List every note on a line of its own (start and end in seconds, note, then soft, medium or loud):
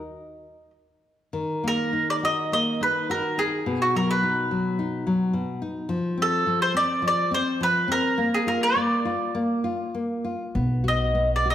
0.00 0.70 D#5 medium
1.33 3.62 D#3 medium
1.64 1.92 A#3 soft
1.68 2.10 A#4 medium
1.93 2.22 D#4 soft
2.10 2.15 D5 medium
2.23 2.51 F#4 soft
2.23 2.51 D#5 medium
2.52 2.80 A#3 soft
2.52 2.82 D#5 medium
2.81 3.09 D#4 soft
2.81 3.11 B4 medium
3.10 3.37 F#4 soft
3.10 3.40 A#4 medium
3.38 3.65 D#4 soft
3.38 3.81 G#4 medium
3.66 5.32 B2 medium
3.82 3.94 F#4 medium
3.95 4.22 F#3 soft
3.95 4.10 A#4 medium
4.11 5.17 B4 medium
4.23 4.50 D#4 medium
4.51 4.78 F#3 soft
4.79 5.05 D#4 medium
5.07 5.33 F#3 soft
5.33 5.61 B2 medium
5.62 5.89 D#4 medium
5.89 6.46 F3 medium
6.18 6.46 C4 soft
6.22 6.60 A4 medium
6.47 6.75 F3 medium
6.62 6.76 C5 medium
6.74 7.02 C4 medium
6.74 7.05 D5 loud
7.02 7.30 F3 medium
7.08 7.32 D5 loud
7.31 7.59 C4 medium
7.31 7.62 C5 medium
7.61 7.88 F3 medium
7.61 7.91 B4 medium
7.88 8.17 C4 medium
7.88 8.35 A#4 medium
8.18 8.75 A#3 medium
8.34 8.47 G#4 medium
8.47 8.75 F4 soft
8.47 8.63 A#4 medium
8.63 9.76 D5 medium
8.76 9.04 A#3 soft
9.05 9.34 F4 soft
9.35 9.63 A#3 medium
9.64 9.93 F4 soft
9.95 10.24 A#3 soft
10.25 10.54 F4 soft
10.55 11.55 B1 medium
10.55 11.14 B3 medium
10.84 11.13 F#4 soft
10.88 11.29 D#5 medium
11.15 11.44 B3 soft
11.36 11.47 D5 medium
11.46 11.55 F#4 soft
11.50 11.55 D#5 medium